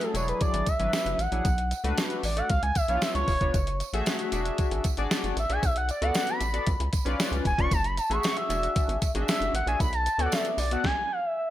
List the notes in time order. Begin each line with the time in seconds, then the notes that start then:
Already playing: F#3 A3 E4 G#4
0.01 A4, closed hi-hat
0.13 E1 F#3 D4 E4 G#4 C#5, closed hi-hat, tambourine
0.28 B4, closed hi-hat
0.41 D5, kick, closed hi-hat, tambourine
0.53 G#1, closed hi-hat
0.66 E5, kick, closed hi-hat, tambourine
0.79 G#1 F#3 D4 E4 B4, closed hi-hat
0.93 snare, closed hi-hat, tambourine
1.05 F#1, closed hi-hat
1.18 A1 F#5, closed hi-hat, tambourine
1.32 A#1 F#3 D4 E4 G#4, closed hi-hat
1.45 B1, kick, closed hi-hat, tambourine
1.58 closed hi-hat
1.71 closed hi-hat, tambourine
1.84 C#2 A3 D4 F#4 B4, closed hi-hat
1.98 snare, closed hi-hat, tambourine
2.10 closed hi-hat
2.23 A1 D5, open hi-hat, tambourine
2.36 A3 D4 F#4 D5 F#5, closed hi-hat
2.50 C#2 F5, kick, closed hi-hat, tambourine
2.63 C#2 G#5, closed hi-hat
2.75 E5, kick, closed hi-hat, tambourine
2.88 B1 B3 D4 E4 C#5 F5, closed hi-hat
2.95 F4
3.02 E5, snare, closed hi-hat, tambourine
3.15 C#2 C#5, closed hi-hat
3.28 E1, kick, open hi-hat, tambourine
3.41 F1 B3 D4 F4 C#5, kick, closed hi-hat
3.54 F#1, kick, closed hi-hat, tambourine
3.67 closed hi-hat
3.80 closed hi-hat, tambourine
3.93 A1 A3 F#4 G#4 E5, closed hi-hat
4.06 snare, closed hi-hat, tambourine
4.19 closed hi-hat
4.32 E1 D4 F#4 G#4 E5, closed hi-hat, tambourine
4.46 closed hi-hat
4.58 kick, closed hi-hat, tambourine
4.71 G#1, closed hi-hat
4.84 kick, closed hi-hat, tambourine
4.97 G#1 D4 F#4 G#4 D5, closed hi-hat
5.11 snare, closed hi-hat, tambourine
5.24 F#1, closed hi-hat
5.36 A1 E5, closed hi-hat, tambourine
5.49 A#1 D4 F#4 G#4 E5 G#5, closed hi-hat
5.63 B1 E5, kick, closed hi-hat, tambourine
5.76 F#5, closed hi-hat
5.89 D5, closed hi-hat, tambourine
6.01 C#2 B3 F#4 A4 D5 F#5, closed hi-hat
6.14 F#5, snare, closed hi-hat, tambourine
6.27 B5, closed hi-hat
6.41 A1, closed hi-hat, tambourine
6.53 B3 F#4 A4 D5, closed hi-hat
6.67 C#2, kick, closed hi-hat, tambourine
6.80 C#2, closed hi-hat
6.93 kick, closed hi-hat, tambourine
7.05 B1 C#4 F4 B4 D5, closed hi-hat
7.20 snare, closed hi-hat, tambourine
7.31 C#2, closed hi-hat
7.45 E1 G#5, kick, closed hi-hat, tambourine
7.58 F1 C#4 F4 B4 D5 C#6, kick, closed hi-hat
7.71 F#1 A5, kick, closed hi-hat, tambourine
7.84 B5, closed hi-hat
7.97 A5, closed hi-hat, tambourine
8.10 A1 A3 F#4 G#4 E5 C#6, closed hi-hat
8.23 C#6, snare, closed hi-hat, tambourine
8.37 E5, closed hi-hat
8.49 E1 D4 F#4 G#4 E5, closed hi-hat, tambourine
8.63 closed hi-hat
8.76 kick, closed hi-hat, tambourine
8.88 G#1, closed hi-hat
9.02 kick, closed hi-hat, tambourine
9.15 G#1 D4 F#4 G#4 D#5, closed hi-hat
9.22 E5
9.28 E5, snare, closed hi-hat, tambourine
9.40 F#1, closed hi-hat
9.53 A1 F#5, closed hi-hat
9.66 A#1 D4 F#4 G#4 E5 G#5, closed hi-hat
9.80 B1 B5, kick, closed hi-hat, tambourine
9.93 A5, closed hi-hat
10.06 closed hi-hat, tambourine
10.18 D2 B3 F#4 A4 C#5 F#5, closed hi-hat
10.26 D5
10.32 E5, snare, closed hi-hat, tambourine
10.45 closed hi-hat
10.58 B1 D5, open hi-hat, tambourine
10.71 B3 F#4 A4 D5 F#5, closed hi-hat
10.84 G#5, kick, snare
11.12 F5
11.26 E5